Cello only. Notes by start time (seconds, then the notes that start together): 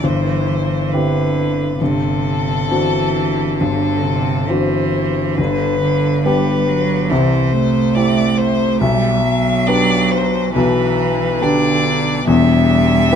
Already playing: E3
0.93 D3
1.80 C3
2.70 E3
3.60 D3
4.05 C3
4.49 E3
5.38 D3
5.82 D3
6.24 G3
6.68 F#3
7.10 E3
7.53 A3
8.81 G3
9.23 F#3
10.54 E3
11.42 D3
12.26 G3